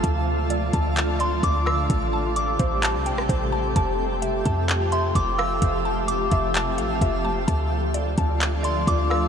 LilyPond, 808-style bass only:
\new Staff \with { instrumentName = "808-style bass" } { \clef bass \time 4/4 \key f \major \tempo 4 = 129 d,4. d,4. d,4 | a,,4. a,,8. c,16. a,,16. a,,4 | f,,4. f,4. f,,4 | f,,4. f,,4 a,,8 f,,4 |
d,4. d,4. d,4 | }